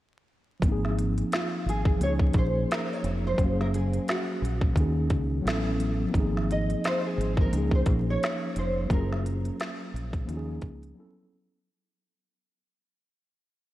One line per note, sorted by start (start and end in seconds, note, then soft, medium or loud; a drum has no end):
0.60 1.22 G#1 loud
0.60 1.95 F3 medium
0.60 1.98 A#3 medium
0.60 kick loud
0.60 closed hi-hat medium
0.66 1.99 C4 medium
0.66 2.01 D#4 medium
0.72 2.02 G#4 medium
0.85 snare soft
0.99 closed hi-hat medium
1.18 closed hi-hat soft
1.32 1.68 F4 medium
1.32 snare loud
1.32 clap medium
1.32 closed hi-hat medium
1.66 1.96 G#1 medium
1.66 2.03 G#4 medium
1.66 closed hi-hat medium
1.85 kick loud
1.97 2.30 C#2 loud
1.97 3.34 F3 medium
1.97 3.35 A#3 medium
2.01 3.37 C#4 medium
2.01 2.12 C#5 loud
2.01 closed hi-hat medium
2.06 3.38 D#4 medium
2.06 3.40 G#4 medium
2.19 kick medium
2.33 2.64 A#1 medium
2.33 kick medium
2.33 closed hi-hat medium
2.38 2.72 C5 medium
2.71 2.93 A#4 medium
2.71 snare loud
2.71 clap medium
2.71 closed hi-hat medium
2.93 3.26 C#5 medium
3.04 3.33 F1 medium
3.04 closed hi-hat medium
3.27 3.60 C5 loud
3.34 4.71 F#3 medium
3.34 4.73 A#3 medium
3.38 3.98 F#1 loud
3.38 4.74 C#4 medium
3.38 kick loud
3.38 closed hi-hat medium
3.43 3.50 F#4 medium
3.43 4.76 F5 medium
3.53 4.79 G#4 medium
3.61 3.66 A#4 medium
3.61 snare soft
3.74 4.09 G#4 medium
3.74 closed hi-hat medium
3.94 closed hi-hat soft
4.08 5.77 F#4 medium
4.08 snare loud
4.08 clap medium
4.08 closed hi-hat medium
4.42 4.72 A#1 medium
4.42 closed hi-hat medium
4.61 kick medium
4.74 5.11 D#2 loud
4.74 5.44 D#3 medium
4.74 5.45 A#3 medium
4.74 5.46 C#4 medium
4.74 kick medium
4.74 closed hi-hat medium
4.79 5.46 D#4 medium
4.79 5.47 G#4 medium
5.10 5.40 C#2 medium
5.10 kick medium
5.10 closed hi-hat medium
5.42 6.05 A1 loud
5.42 6.13 F#3 medium
5.42 6.13 B3 medium
5.42 5.53 C4 medium
5.46 6.15 E4 medium
5.46 6.16 A4 medium
5.46 snare loud
5.46 clap medium
5.46 closed hi-hat medium
5.51 6.17 C#4 medium
5.80 closed hi-hat medium
6.07 7.44 F3 medium
6.07 7.47 A#3 medium
6.13 6.74 G#1 loud
6.13 7.49 C4 medium
6.13 7.50 D#4 medium
6.13 kick loud
6.13 closed hi-hat medium
6.19 7.52 G#4 medium
6.37 snare soft
6.51 6.86 D#5 loud
6.51 closed hi-hat medium
6.70 closed hi-hat soft
6.84 7.06 C5 loud
6.84 snare loud
6.84 clap medium
6.84 closed hi-hat medium
7.06 7.40 G#4 medium
7.18 7.47 G#1 medium
7.18 closed hi-hat medium
7.37 7.75 A#4 medium
7.37 kick loud
7.46 8.84 F3 medium
7.46 8.85 A#3 medium
7.52 7.82 C#2 loud
7.52 8.87 C#4 medium
7.52 8.89 D#4 medium
7.52 closed hi-hat medium
7.58 8.90 G#4 medium
7.71 7.84 C5 medium
7.71 kick medium
7.86 8.16 A#1 medium
7.86 kick medium
7.86 closed hi-hat medium
8.10 8.58 C#5 loud
8.23 snare loud
8.23 clap medium
8.23 closed hi-hat medium
8.56 8.86 F1 medium
8.56 8.92 C5 medium
8.56 closed hi-hat medium
8.85 10.23 F#3 medium
8.85 10.24 A#3 medium
8.90 9.49 F#1 loud
8.90 10.26 C#4 medium
8.90 10.27 F4 medium
8.90 9.91 A#4 medium
8.90 kick loud
8.90 closed hi-hat medium
8.97 10.29 G#4 medium
9.12 snare soft
9.26 closed hi-hat medium
9.45 closed hi-hat soft
9.60 snare loud
9.60 clap medium
9.60 closed hi-hat medium
9.94 10.23 A#1 medium
9.94 closed hi-hat medium
10.13 kick medium
10.13 closed hi-hat soft
10.24 10.58 D#2 loud
10.24 10.95 F3 medium
10.24 10.96 A#3 medium
10.24 10.96 C#4 medium
10.29 10.97 D#4 medium
10.29 10.37 F#4 medium
10.29 closed hi-hat medium
10.37 11.01 G#4 medium
10.62 10.92 C#2 medium
10.62 kick medium
10.62 closed hi-hat medium
10.83 closed hi-hat soft
10.94 11.64 F#3 medium
10.94 11.65 B3 medium
10.94 11.66 C#4 medium
10.98 11.67 E4 medium
10.98 11.67 A4 medium